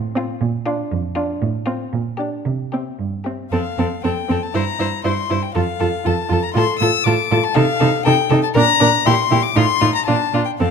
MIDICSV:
0, 0, Header, 1, 5, 480
1, 0, Start_track
1, 0, Key_signature, -1, "major"
1, 0, Tempo, 503778
1, 397, Time_signature, 2, 2, 24, 8
1, 1840, Tempo, 525394
1, 3760, Tempo, 505476
1, 7111, Key_signature, -2, "major"
1, 10098, End_track
2, 0, Start_track
2, 0, Title_t, "Violin"
2, 0, Program_c, 0, 40
2, 163, Note_on_c, 0, 77, 59
2, 338, Note_off_c, 0, 77, 0
2, 642, Note_on_c, 0, 77, 58
2, 815, Note_off_c, 0, 77, 0
2, 1119, Note_on_c, 0, 77, 53
2, 1295, Note_off_c, 0, 77, 0
2, 1596, Note_on_c, 0, 77, 52
2, 1778, Note_off_c, 0, 77, 0
2, 2088, Note_on_c, 0, 74, 50
2, 2265, Note_off_c, 0, 74, 0
2, 2580, Note_on_c, 0, 76, 44
2, 2755, Note_off_c, 0, 76, 0
2, 3052, Note_on_c, 0, 76, 43
2, 3230, Note_off_c, 0, 76, 0
2, 3294, Note_on_c, 0, 77, 68
2, 3729, Note_off_c, 0, 77, 0
2, 3774, Note_on_c, 0, 79, 60
2, 4136, Note_on_c, 0, 81, 64
2, 4150, Note_off_c, 0, 79, 0
2, 4244, Note_on_c, 0, 82, 81
2, 4258, Note_off_c, 0, 81, 0
2, 4719, Note_off_c, 0, 82, 0
2, 4724, Note_on_c, 0, 84, 69
2, 5084, Note_on_c, 0, 79, 63
2, 5098, Note_off_c, 0, 84, 0
2, 5196, Note_off_c, 0, 79, 0
2, 5202, Note_on_c, 0, 77, 79
2, 5682, Note_on_c, 0, 81, 73
2, 5696, Note_off_c, 0, 77, 0
2, 6033, Note_on_c, 0, 82, 74
2, 6047, Note_off_c, 0, 81, 0
2, 6138, Note_off_c, 0, 82, 0
2, 6144, Note_on_c, 0, 84, 93
2, 6378, Note_off_c, 0, 84, 0
2, 6384, Note_on_c, 0, 88, 96
2, 6616, Note_on_c, 0, 86, 84
2, 6630, Note_off_c, 0, 88, 0
2, 6991, Note_on_c, 0, 81, 94
2, 7005, Note_off_c, 0, 86, 0
2, 7098, Note_on_c, 0, 77, 107
2, 7112, Note_off_c, 0, 81, 0
2, 7579, Note_off_c, 0, 77, 0
2, 7583, Note_on_c, 0, 79, 86
2, 7930, Note_off_c, 0, 79, 0
2, 7936, Note_on_c, 0, 81, 85
2, 7985, Note_off_c, 0, 81, 0
2, 8055, Note_on_c, 0, 82, 123
2, 8536, Note_on_c, 0, 84, 101
2, 8550, Note_off_c, 0, 82, 0
2, 8885, Note_on_c, 0, 86, 98
2, 8899, Note_off_c, 0, 84, 0
2, 9009, Note_on_c, 0, 84, 115
2, 9023, Note_off_c, 0, 86, 0
2, 9373, Note_off_c, 0, 84, 0
2, 9379, Note_on_c, 0, 82, 81
2, 9480, Note_off_c, 0, 82, 0
2, 9485, Note_on_c, 0, 81, 78
2, 9851, Note_off_c, 0, 81, 0
2, 9856, Note_on_c, 0, 79, 63
2, 9909, Note_off_c, 0, 79, 0
2, 9984, Note_on_c, 0, 77, 74
2, 10098, Note_off_c, 0, 77, 0
2, 10098, End_track
3, 0, Start_track
3, 0, Title_t, "Violin"
3, 0, Program_c, 1, 40
3, 161, Note_on_c, 1, 65, 55
3, 337, Note_off_c, 1, 65, 0
3, 632, Note_on_c, 1, 65, 59
3, 810, Note_off_c, 1, 65, 0
3, 1100, Note_on_c, 1, 65, 53
3, 1285, Note_off_c, 1, 65, 0
3, 1582, Note_on_c, 1, 65, 54
3, 1770, Note_off_c, 1, 65, 0
3, 2063, Note_on_c, 1, 67, 47
3, 2252, Note_off_c, 1, 67, 0
3, 2563, Note_on_c, 1, 67, 45
3, 2746, Note_off_c, 1, 67, 0
3, 3041, Note_on_c, 1, 67, 40
3, 3224, Note_off_c, 1, 67, 0
3, 3291, Note_on_c, 1, 69, 44
3, 3364, Note_off_c, 1, 69, 0
3, 3534, Note_on_c, 1, 69, 44
3, 3607, Note_off_c, 1, 69, 0
3, 3768, Note_on_c, 1, 69, 45
3, 3844, Note_off_c, 1, 69, 0
3, 4015, Note_on_c, 1, 69, 45
3, 4091, Note_off_c, 1, 69, 0
3, 4251, Note_on_c, 1, 72, 49
3, 4327, Note_off_c, 1, 72, 0
3, 4488, Note_on_c, 1, 72, 46
3, 4564, Note_off_c, 1, 72, 0
3, 4720, Note_on_c, 1, 72, 50
3, 4796, Note_off_c, 1, 72, 0
3, 4970, Note_on_c, 1, 72, 42
3, 5046, Note_off_c, 1, 72, 0
3, 5199, Note_on_c, 1, 69, 54
3, 5275, Note_off_c, 1, 69, 0
3, 5436, Note_on_c, 1, 69, 50
3, 5512, Note_off_c, 1, 69, 0
3, 5685, Note_on_c, 1, 69, 56
3, 5761, Note_off_c, 1, 69, 0
3, 5932, Note_on_c, 1, 69, 51
3, 6008, Note_off_c, 1, 69, 0
3, 6168, Note_on_c, 1, 69, 62
3, 6244, Note_off_c, 1, 69, 0
3, 6408, Note_on_c, 1, 69, 60
3, 6484, Note_off_c, 1, 69, 0
3, 6640, Note_on_c, 1, 69, 57
3, 6716, Note_off_c, 1, 69, 0
3, 6876, Note_on_c, 1, 69, 57
3, 6952, Note_off_c, 1, 69, 0
3, 7097, Note_on_c, 1, 69, 73
3, 7173, Note_off_c, 1, 69, 0
3, 7335, Note_on_c, 1, 69, 62
3, 7411, Note_off_c, 1, 69, 0
3, 7574, Note_on_c, 1, 69, 67
3, 7650, Note_off_c, 1, 69, 0
3, 7811, Note_on_c, 1, 69, 62
3, 7887, Note_off_c, 1, 69, 0
3, 8041, Note_on_c, 1, 70, 74
3, 8117, Note_off_c, 1, 70, 0
3, 8287, Note_on_c, 1, 70, 69
3, 8363, Note_off_c, 1, 70, 0
3, 8537, Note_on_c, 1, 67, 66
3, 8613, Note_off_c, 1, 67, 0
3, 8780, Note_on_c, 1, 67, 64
3, 8856, Note_off_c, 1, 67, 0
3, 9014, Note_on_c, 1, 65, 67
3, 9090, Note_off_c, 1, 65, 0
3, 9247, Note_on_c, 1, 65, 62
3, 9323, Note_off_c, 1, 65, 0
3, 9495, Note_on_c, 1, 65, 51
3, 9571, Note_off_c, 1, 65, 0
3, 9750, Note_on_c, 1, 65, 51
3, 9826, Note_off_c, 1, 65, 0
3, 9999, Note_on_c, 1, 69, 49
3, 10075, Note_off_c, 1, 69, 0
3, 10098, End_track
4, 0, Start_track
4, 0, Title_t, "Viola"
4, 0, Program_c, 2, 41
4, 150, Note_on_c, 2, 60, 61
4, 331, Note_off_c, 2, 60, 0
4, 631, Note_on_c, 2, 62, 59
4, 809, Note_off_c, 2, 62, 0
4, 1107, Note_on_c, 2, 62, 54
4, 1288, Note_off_c, 2, 62, 0
4, 1588, Note_on_c, 2, 60, 53
4, 1774, Note_off_c, 2, 60, 0
4, 2078, Note_on_c, 2, 62, 42
4, 2260, Note_off_c, 2, 62, 0
4, 2576, Note_on_c, 2, 60, 46
4, 2753, Note_off_c, 2, 60, 0
4, 3057, Note_on_c, 2, 60, 43
4, 3233, Note_off_c, 2, 60, 0
4, 3298, Note_on_c, 2, 60, 45
4, 3371, Note_off_c, 2, 60, 0
4, 3534, Note_on_c, 2, 60, 45
4, 3607, Note_off_c, 2, 60, 0
4, 3766, Note_on_c, 2, 60, 42
4, 3842, Note_off_c, 2, 60, 0
4, 4000, Note_on_c, 2, 60, 44
4, 4076, Note_off_c, 2, 60, 0
4, 4244, Note_on_c, 2, 64, 45
4, 4320, Note_off_c, 2, 64, 0
4, 4478, Note_on_c, 2, 64, 45
4, 4554, Note_off_c, 2, 64, 0
4, 4719, Note_on_c, 2, 64, 47
4, 4795, Note_off_c, 2, 64, 0
4, 4961, Note_on_c, 2, 64, 48
4, 5037, Note_off_c, 2, 64, 0
4, 5200, Note_on_c, 2, 65, 50
4, 5276, Note_off_c, 2, 65, 0
4, 5440, Note_on_c, 2, 65, 48
4, 5516, Note_off_c, 2, 65, 0
4, 5671, Note_on_c, 2, 65, 51
4, 5747, Note_off_c, 2, 65, 0
4, 5904, Note_on_c, 2, 65, 51
4, 5980, Note_off_c, 2, 65, 0
4, 6142, Note_on_c, 2, 65, 56
4, 6218, Note_off_c, 2, 65, 0
4, 6395, Note_on_c, 2, 65, 56
4, 6471, Note_off_c, 2, 65, 0
4, 6633, Note_on_c, 2, 65, 60
4, 6709, Note_off_c, 2, 65, 0
4, 6872, Note_on_c, 2, 65, 57
4, 6948, Note_off_c, 2, 65, 0
4, 7103, Note_on_c, 2, 63, 64
4, 7179, Note_off_c, 2, 63, 0
4, 7345, Note_on_c, 2, 63, 65
4, 7421, Note_off_c, 2, 63, 0
4, 7586, Note_on_c, 2, 63, 65
4, 7662, Note_off_c, 2, 63, 0
4, 7824, Note_on_c, 2, 63, 67
4, 7900, Note_off_c, 2, 63, 0
4, 8057, Note_on_c, 2, 62, 69
4, 8133, Note_off_c, 2, 62, 0
4, 8287, Note_on_c, 2, 62, 67
4, 8363, Note_off_c, 2, 62, 0
4, 8529, Note_on_c, 2, 64, 65
4, 8605, Note_off_c, 2, 64, 0
4, 8769, Note_on_c, 2, 64, 61
4, 8845, Note_off_c, 2, 64, 0
4, 9007, Note_on_c, 2, 63, 66
4, 9083, Note_off_c, 2, 63, 0
4, 9251, Note_on_c, 2, 63, 61
4, 9327, Note_off_c, 2, 63, 0
4, 9500, Note_on_c, 2, 62, 57
4, 9576, Note_off_c, 2, 62, 0
4, 9742, Note_on_c, 2, 62, 47
4, 9818, Note_off_c, 2, 62, 0
4, 9997, Note_on_c, 2, 60, 46
4, 10073, Note_off_c, 2, 60, 0
4, 10098, End_track
5, 0, Start_track
5, 0, Title_t, "Cello"
5, 0, Program_c, 3, 42
5, 0, Note_on_c, 3, 45, 69
5, 293, Note_off_c, 3, 45, 0
5, 389, Note_on_c, 3, 46, 75
5, 768, Note_off_c, 3, 46, 0
5, 870, Note_on_c, 3, 41, 64
5, 1250, Note_off_c, 3, 41, 0
5, 1349, Note_on_c, 3, 45, 69
5, 1736, Note_off_c, 3, 45, 0
5, 1835, Note_on_c, 3, 46, 60
5, 2219, Note_off_c, 3, 46, 0
5, 2318, Note_on_c, 3, 48, 55
5, 2706, Note_off_c, 3, 48, 0
5, 2803, Note_on_c, 3, 43, 47
5, 3188, Note_off_c, 3, 43, 0
5, 3287, Note_on_c, 3, 41, 56
5, 3361, Note_off_c, 3, 41, 0
5, 3528, Note_on_c, 3, 41, 51
5, 3601, Note_off_c, 3, 41, 0
5, 3765, Note_on_c, 3, 41, 49
5, 3841, Note_off_c, 3, 41, 0
5, 4007, Note_on_c, 3, 41, 52
5, 4083, Note_off_c, 3, 41, 0
5, 4248, Note_on_c, 3, 43, 59
5, 4324, Note_off_c, 3, 43, 0
5, 4479, Note_on_c, 3, 43, 49
5, 4555, Note_off_c, 3, 43, 0
5, 4717, Note_on_c, 3, 43, 54
5, 4793, Note_off_c, 3, 43, 0
5, 4963, Note_on_c, 3, 43, 53
5, 5039, Note_off_c, 3, 43, 0
5, 5205, Note_on_c, 3, 41, 62
5, 5281, Note_off_c, 3, 41, 0
5, 5442, Note_on_c, 3, 41, 57
5, 5518, Note_off_c, 3, 41, 0
5, 5683, Note_on_c, 3, 41, 61
5, 5759, Note_off_c, 3, 41, 0
5, 5921, Note_on_c, 3, 41, 62
5, 5996, Note_off_c, 3, 41, 0
5, 6154, Note_on_c, 3, 45, 70
5, 6230, Note_off_c, 3, 45, 0
5, 6393, Note_on_c, 3, 45, 67
5, 6469, Note_off_c, 3, 45, 0
5, 6631, Note_on_c, 3, 45, 70
5, 6707, Note_off_c, 3, 45, 0
5, 6872, Note_on_c, 3, 45, 66
5, 6948, Note_off_c, 3, 45, 0
5, 7108, Note_on_c, 3, 48, 80
5, 7184, Note_off_c, 3, 48, 0
5, 7344, Note_on_c, 3, 48, 72
5, 7420, Note_off_c, 3, 48, 0
5, 7583, Note_on_c, 3, 48, 75
5, 7659, Note_off_c, 3, 48, 0
5, 7813, Note_on_c, 3, 48, 76
5, 7889, Note_off_c, 3, 48, 0
5, 8051, Note_on_c, 3, 46, 82
5, 8127, Note_off_c, 3, 46, 0
5, 8296, Note_on_c, 3, 46, 74
5, 8372, Note_off_c, 3, 46, 0
5, 8536, Note_on_c, 3, 46, 76
5, 8611, Note_off_c, 3, 46, 0
5, 8776, Note_on_c, 3, 46, 72
5, 8852, Note_off_c, 3, 46, 0
5, 9008, Note_on_c, 3, 45, 85
5, 9084, Note_off_c, 3, 45, 0
5, 9248, Note_on_c, 3, 45, 66
5, 9324, Note_off_c, 3, 45, 0
5, 9501, Note_on_c, 3, 46, 66
5, 9577, Note_off_c, 3, 46, 0
5, 9744, Note_on_c, 3, 46, 55
5, 9820, Note_off_c, 3, 46, 0
5, 9996, Note_on_c, 3, 41, 61
5, 10072, Note_off_c, 3, 41, 0
5, 10098, End_track
0, 0, End_of_file